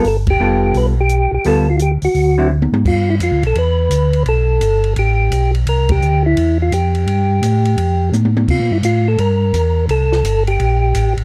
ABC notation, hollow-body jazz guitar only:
X:1
M:4/4
L:1/8
Q:"Swing" 1/4=170
K:Gmix
V:1 name="Hollow-body jazz guitar"
z2 [G,B,FA]3 z3 | [G,B,FA] z4 [D,^F,CE] z2 | z8 | z8 |
z8 | z8 | z8 | z8 |]